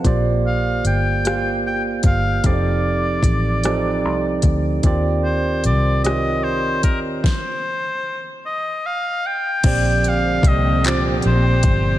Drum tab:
CC |------|------|------|------|
HH |x-xx-x|x-xx-x|x-xx-x|------|
CP |------|------|------|------|
SD |---r--|---r--|---r--|o-----|
BD |o----o|o-o--o|o----o|o-----|

CC |x-----|
HH |xxxxxx|
CP |---x--|
SD |------|
BD |o-o--o|